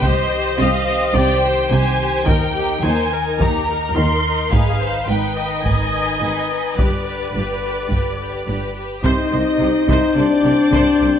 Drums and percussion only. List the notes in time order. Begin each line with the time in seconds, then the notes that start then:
0.03 taiko
2.28 taiko
3.40 taiko
4.53 taiko
5.66 taiko
6.79 taiko
7.92 taiko
9.04 taiko
9.89 taiko
10.73 taiko